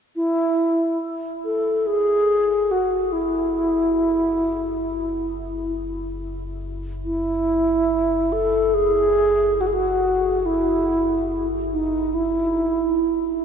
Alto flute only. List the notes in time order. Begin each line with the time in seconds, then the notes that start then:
0.16 E4
1.45 A4
1.87 G#4
2.71 F#4
3.12 E4
7.05 E4
8.32 A4
8.74 G#4
9.61 F#4
9.67 G#4
9.73 F#4
10.46 E4
11.72 D#4
12.14 E4